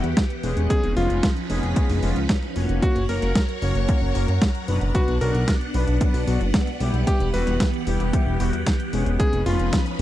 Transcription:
Already playing: E3 B3 G4 F#5
0.04 E2, closed hi-hat
0.17 kick, snare, closed hi-hat
0.30 closed hi-hat
0.43 E1 G#3 B3 C#4 G#4, open hi-hat
0.57 E1, closed hi-hat
0.70 F3 C#4 D#4 G#4 B4, kick, closed hi-hat
0.83 F1, closed hi-hat
0.96 F1 G#3 B3 C#4 F4, open hi-hat
1.10 F1, closed hi-hat
1.23 kick, snare, closed hi-hat
1.37 closed hi-hat
1.50 F1 G#3 B3 C#4 G#4, open hi-hat
1.63 F1, closed hi-hat
1.76 kick, closed hi-hat
1.89 F1, open hi-hat
2.03 F1 G#3 B3 C#4 F4, open hi-hat
2.16 C#2, closed hi-hat
2.29 kick, snare, closed hi-hat
2.43 snare, closed hi-hat
2.56 F1 A#3 C#4 F#4 C#5, open hi-hat
2.69 F1, closed hi-hat
2.82 F#3 F#4 A#4 C#5 F#5, kick, closed hi-hat
2.96 F#1, closed hi-hat
3.09 F#1 A#3 C#4 F#4 A#4, open hi-hat
3.22 F#1, snare, closed hi-hat
3.35 kick, snare, closed hi-hat
3.49 closed hi-hat
3.62 F#1 A#3 C#4 F#4 C#5, open hi-hat
3.75 F#1, closed hi-hat
3.89 kick, closed hi-hat
4.02 F#1
4.15 F#1 A#3 C#4 F#4 A#4, open hi-hat
4.28 F#2, closed hi-hat
4.42 kick, snare, closed hi-hat
4.55 closed hi-hat
4.68 F#1 B2 F#3 B3 D4 B4, open hi-hat
4.81 F#1, closed hi-hat
4.95 B3 D4 F#4, kick, closed hi-hat
5.08 B1, closed hi-hat
5.21 B1 B2 F#3 B3 D4 F#4 A#4, open hi-hat
5.34 B1, closed hi-hat
5.48 kick, snare, closed hi-hat
5.61 closed hi-hat
5.74 B1 B2 F#3 B3 D4 B4, open hi-hat
5.88 B1, closed hi-hat
6.01 kick, closed hi-hat
6.14 B1, open hi-hat
6.27 B1 B2 F#3 B3 D4 F#4, open hi-hat
6.41 F#1, closed hi-hat
6.54 kick, snare, closed hi-hat
6.67 snare, closed hi-hat
6.80 B1 G3 B3 E4 G4, open hi-hat
6.94 B1, closed hi-hat
7.07 E3 G4, kick, closed hi-hat
7.20 E1, closed hi-hat
7.34 E1 G3 B3 E4 F#4 B4, open hi-hat
7.47 E1, snare, closed hi-hat
7.60 kick, snare, closed hi-hat
7.74 closed hi-hat
7.87 E1 G3 B3 E4 G4, open hi-hat
8.00 E1, closed hi-hat
8.13 kick, closed hi-hat
8.26 E1
8.40 E1 G3 B3 E4 F#4, open hi-hat
8.53 E2, closed hi-hat
8.66 kick, snare, closed hi-hat
8.80 closed hi-hat
8.93 E1 G#3 B3 C#4 G#4, open hi-hat
9.06 E1, closed hi-hat
9.19 F3 C#4 D#4 G#4 B4, kick, closed hi-hat
9.33 F1, closed hi-hat
9.46 F1 G#3 B3 C#4 F4, open hi-hat
9.59 F1, closed hi-hat
9.73 kick, snare, closed hi-hat
9.86 closed hi-hat

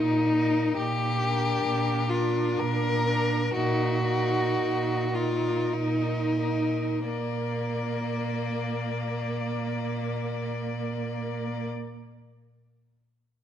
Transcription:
Already playing: A#2 D#4 A#4
0.36 D#4 A#4
0.77 A#2 G4
1.19 D4 A#4
1.64 A#2
2.10 D4 F4 A#4
2.59 A#2 A#4
3.07 D4 A#4
3.54 A#2 D#4 F#4 A#4
4.06 D#4 A#4
4.58 A#2
5.14 D#4 F4 A#4
5.74 A#2 D#4
6.40 D#4 A#4
7.08 A#2 A#3 D5

